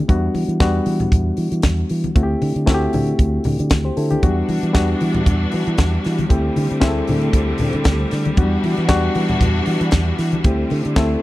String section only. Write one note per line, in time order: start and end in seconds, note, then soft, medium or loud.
4.23 6.28 E3 medium
4.23 11.22 G3 medium
4.23 6.28 D4 medium
4.23 6.28 F#4 medium
6.30 8.35 D3 medium
6.30 8.35 A3 medium
6.30 8.35 C4 medium
8.38 10.43 E3 medium
8.38 10.43 D4 medium
8.38 10.43 F#4 medium
10.45 11.22 D3 medium
10.45 11.22 A3 medium
10.45 11.22 C4 medium